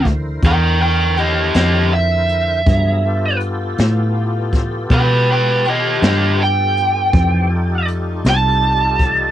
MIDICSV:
0, 0, Header, 1, 6, 480
1, 0, Start_track
1, 0, Tempo, 744417
1, 1722, Time_signature, 12, 3, 24, 8
1, 6005, End_track
2, 0, Start_track
2, 0, Title_t, "Lead electric guitar"
2, 0, Program_c, 0, 29
2, 296, Note_on_c, 0, 70, 80
2, 299, Note_on_c, 0, 79, 85
2, 522, Note_off_c, 0, 70, 0
2, 523, Note_off_c, 0, 79, 0
2, 529, Note_on_c, 0, 70, 63
2, 534, Note_on_c, 0, 79, 69
2, 749, Note_off_c, 0, 70, 0
2, 759, Note_off_c, 0, 79, 0
2, 764, Note_on_c, 0, 67, 80
2, 771, Note_on_c, 0, 75, 89
2, 986, Note_off_c, 0, 67, 0
2, 999, Note_off_c, 0, 75, 0
2, 1011, Note_on_c, 0, 67, 70
2, 1016, Note_on_c, 0, 75, 71
2, 1230, Note_off_c, 0, 67, 0
2, 1241, Note_off_c, 0, 75, 0
2, 1245, Note_on_c, 0, 76, 74
2, 2178, Note_off_c, 0, 76, 0
2, 3178, Note_on_c, 0, 71, 82
2, 3183, Note_on_c, 0, 79, 81
2, 3405, Note_off_c, 0, 79, 0
2, 3411, Note_off_c, 0, 71, 0
2, 3425, Note_on_c, 0, 71, 72
2, 3431, Note_on_c, 0, 79, 78
2, 3638, Note_off_c, 0, 71, 0
2, 3650, Note_off_c, 0, 79, 0
2, 3668, Note_on_c, 0, 67, 71
2, 3673, Note_on_c, 0, 75, 83
2, 3880, Note_off_c, 0, 67, 0
2, 3890, Note_off_c, 0, 75, 0
2, 3902, Note_on_c, 0, 67, 76
2, 3906, Note_on_c, 0, 75, 75
2, 4117, Note_off_c, 0, 67, 0
2, 4126, Note_off_c, 0, 75, 0
2, 4145, Note_on_c, 0, 79, 85
2, 5068, Note_off_c, 0, 79, 0
2, 5349, Note_on_c, 0, 81, 91
2, 6005, Note_off_c, 0, 81, 0
2, 6005, End_track
3, 0, Start_track
3, 0, Title_t, "Tonewheel organ"
3, 0, Program_c, 1, 16
3, 0, Note_on_c, 1, 50, 67
3, 0, Note_on_c, 1, 64, 58
3, 0, Note_on_c, 1, 70, 56
3, 0, Note_on_c, 1, 72, 62
3, 1688, Note_off_c, 1, 70, 0
3, 1688, Note_off_c, 1, 72, 0
3, 1690, Note_off_c, 1, 64, 0
3, 1691, Note_off_c, 1, 50, 0
3, 1730, Note_on_c, 1, 82, 64
3, 1734, Note_on_c, 1, 54, 61
3, 1735, Note_on_c, 1, 59, 58
3, 1735, Note_on_c, 1, 68, 57
3, 1962, Note_off_c, 1, 59, 0
3, 1966, Note_off_c, 1, 82, 0
3, 1967, Note_on_c, 1, 65, 61
3, 1968, Note_off_c, 1, 54, 0
3, 1968, Note_on_c, 1, 69, 65
3, 1969, Note_off_c, 1, 68, 0
3, 1970, Note_on_c, 1, 59, 58
3, 1970, Note_on_c, 1, 67, 64
3, 4580, Note_off_c, 1, 65, 0
3, 4580, Note_off_c, 1, 69, 0
3, 4581, Note_off_c, 1, 59, 0
3, 4581, Note_off_c, 1, 67, 0
3, 4597, Note_on_c, 1, 67, 69
3, 4598, Note_on_c, 1, 69, 65
3, 4599, Note_on_c, 1, 72, 62
3, 4601, Note_on_c, 1, 52, 66
3, 4825, Note_off_c, 1, 69, 0
3, 4831, Note_off_c, 1, 67, 0
3, 4833, Note_on_c, 1, 69, 58
3, 4838, Note_on_c, 1, 63, 69
3, 4839, Note_on_c, 1, 65, 68
3, 4839, Note_on_c, 1, 67, 57
3, 4841, Note_off_c, 1, 72, 0
3, 4842, Note_off_c, 1, 52, 0
3, 6005, Note_off_c, 1, 63, 0
3, 6005, Note_off_c, 1, 65, 0
3, 6005, Note_off_c, 1, 67, 0
3, 6005, Note_off_c, 1, 69, 0
3, 6005, End_track
4, 0, Start_track
4, 0, Title_t, "Saxophone section"
4, 0, Program_c, 2, 65
4, 1715, Note_on_c, 2, 59, 68
4, 1715, Note_on_c, 2, 65, 80
4, 1718, Note_on_c, 2, 57, 72
4, 3145, Note_off_c, 2, 65, 0
4, 3157, Note_on_c, 2, 67, 75
4, 4574, Note_off_c, 2, 59, 0
4, 4583, Note_on_c, 2, 63, 89
4, 4585, Note_off_c, 2, 67, 0
4, 4590, Note_on_c, 2, 55, 81
4, 6005, Note_off_c, 2, 55, 0
4, 6005, Note_off_c, 2, 57, 0
4, 6005, Note_off_c, 2, 63, 0
4, 6005, End_track
5, 0, Start_track
5, 0, Title_t, "Fingered electric bass"
5, 0, Program_c, 3, 33
5, 0, Note_on_c, 3, 38, 85
5, 257, Note_off_c, 3, 38, 0
5, 277, Note_on_c, 3, 40, 80
5, 978, Note_off_c, 3, 40, 0
5, 999, Note_on_c, 3, 41, 82
5, 1699, Note_off_c, 3, 41, 0
5, 1721, Note_on_c, 3, 43, 76
5, 2420, Note_off_c, 3, 43, 0
5, 2442, Note_on_c, 3, 45, 83
5, 3141, Note_off_c, 3, 45, 0
5, 3162, Note_on_c, 3, 47, 87
5, 3861, Note_off_c, 3, 47, 0
5, 3884, Note_on_c, 3, 43, 86
5, 4582, Note_off_c, 3, 43, 0
5, 4602, Note_on_c, 3, 41, 77
5, 5301, Note_off_c, 3, 41, 0
5, 5318, Note_on_c, 3, 36, 86
5, 6005, Note_off_c, 3, 36, 0
5, 6005, End_track
6, 0, Start_track
6, 0, Title_t, "Drums"
6, 34, Note_on_c, 9, 36, 70
6, 34, Note_on_c, 9, 42, 55
6, 99, Note_off_c, 9, 36, 0
6, 99, Note_off_c, 9, 42, 0
6, 272, Note_on_c, 9, 42, 81
6, 274, Note_on_c, 9, 36, 80
6, 337, Note_off_c, 9, 42, 0
6, 339, Note_off_c, 9, 36, 0
6, 753, Note_on_c, 9, 42, 51
6, 818, Note_off_c, 9, 42, 0
6, 994, Note_on_c, 9, 42, 81
6, 1004, Note_on_c, 9, 38, 97
6, 1058, Note_off_c, 9, 42, 0
6, 1069, Note_off_c, 9, 38, 0
6, 1477, Note_on_c, 9, 42, 59
6, 1541, Note_off_c, 9, 42, 0
6, 1718, Note_on_c, 9, 42, 78
6, 1719, Note_on_c, 9, 36, 109
6, 1783, Note_off_c, 9, 42, 0
6, 1784, Note_off_c, 9, 36, 0
6, 2195, Note_on_c, 9, 42, 62
6, 2259, Note_off_c, 9, 42, 0
6, 2438, Note_on_c, 9, 42, 75
6, 2448, Note_on_c, 9, 38, 96
6, 2502, Note_off_c, 9, 42, 0
6, 2513, Note_off_c, 9, 38, 0
6, 2918, Note_on_c, 9, 42, 57
6, 2919, Note_on_c, 9, 36, 72
6, 2928, Note_on_c, 9, 38, 30
6, 2983, Note_off_c, 9, 42, 0
6, 2984, Note_off_c, 9, 36, 0
6, 2993, Note_off_c, 9, 38, 0
6, 3159, Note_on_c, 9, 42, 82
6, 3160, Note_on_c, 9, 36, 86
6, 3223, Note_off_c, 9, 42, 0
6, 3224, Note_off_c, 9, 36, 0
6, 3640, Note_on_c, 9, 42, 53
6, 3705, Note_off_c, 9, 42, 0
6, 3882, Note_on_c, 9, 42, 66
6, 3893, Note_on_c, 9, 38, 102
6, 3947, Note_off_c, 9, 42, 0
6, 3957, Note_off_c, 9, 38, 0
6, 4364, Note_on_c, 9, 42, 57
6, 4429, Note_off_c, 9, 42, 0
6, 4599, Note_on_c, 9, 42, 76
6, 4600, Note_on_c, 9, 36, 110
6, 4663, Note_off_c, 9, 42, 0
6, 4664, Note_off_c, 9, 36, 0
6, 5081, Note_on_c, 9, 42, 59
6, 5145, Note_off_c, 9, 42, 0
6, 5318, Note_on_c, 9, 42, 74
6, 5329, Note_on_c, 9, 38, 96
6, 5383, Note_off_c, 9, 42, 0
6, 5393, Note_off_c, 9, 38, 0
6, 5799, Note_on_c, 9, 42, 60
6, 5800, Note_on_c, 9, 36, 69
6, 5864, Note_off_c, 9, 36, 0
6, 5864, Note_off_c, 9, 42, 0
6, 6005, End_track
0, 0, End_of_file